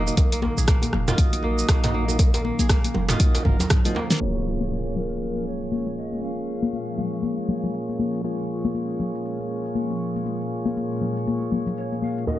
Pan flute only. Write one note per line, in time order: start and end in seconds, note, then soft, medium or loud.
4.21 4.98 C#5 medium
4.96 5.48 A#4 medium
5.47 5.99 C#5 loud
5.97 6.22 D#5 loud
6.23 7.70 F5 loud
11.77 12.01 C#5 medium
12.02 12.26 F5 loud
12.27 12.39 D#5 loud